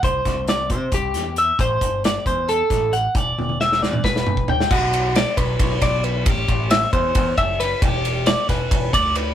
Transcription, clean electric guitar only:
X:1
M:7/8
L:1/8
Q:1/4=135
K:Em
V:1 name="Clean electric guitar"
c2 d c G2 e | c2 d c A2 f | d2 e d B2 g | F2 d B2 d B |
G2 e c2 e B | G2 d B2 d B |]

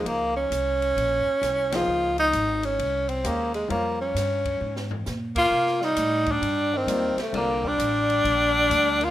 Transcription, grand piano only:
X:1
M:4/4
L:1/8
Q:"Swing" 1/4=132
K:Bbdor
V:1 name="Grand piano"
[F,B,EAc]2 z4 z [F,B,EAc]- | [F,B,EAc]2 z4 [A,DGce] z | [G,FBcd]3 z4 z | z6 [G,CFB=d] z |
[G,CFB=d]3 z4 z |]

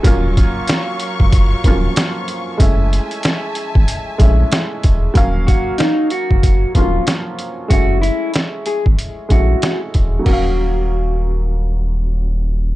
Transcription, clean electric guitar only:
X:1
M:4/4
L:1/16
Q:"Swing 16ths" 1/4=94
K:Ebm
V:1 name="Clean electric guitar"
z16 | z16 | z2 G2 E2 G4 F2 z4 | G2 _F2 z2 A z3 G3 z3 |
G12 z4 |]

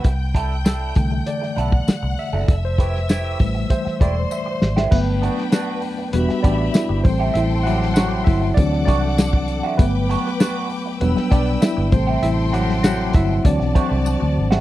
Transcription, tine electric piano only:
X:1
M:4/4
L:1/16
Q:1/4=98
K:G
V:1 name="Tine electric piano"
z8 d6 e2- | e c B2 z4 c2 d2 e2 z2 | B6 z2 [B,B]2 [Dd]2 [Ee]2 [Cc]2 | [Ee]2 [F,f]2 [F,f]2 [Ee]2 [Dd]2 [Dd]4 z2 |
B6 z2 [B,B]2 [Dd]2 [Ee]2 [Cc]2 | [Ee]2 [F,f]2 [F,f]2 [Ee]2 [Dd]2 [Cc]4 z2 |]
V:2 name="Tine electric piano" clef=bass
z6 [D,E,A,]8- [D,E,A,]2 | z6 [E,G,A,]2 z8 | [F,A,B,]2 z6 [G,DF]2 z4 [G,A,]2- | [G,A,]4 z4 [E,F,C]6 z2 |
[F,A,B,]8 [F,G,D]6 [C,G,A,]2- | [C,G,A,]4 z4 [E,F,C]8 |]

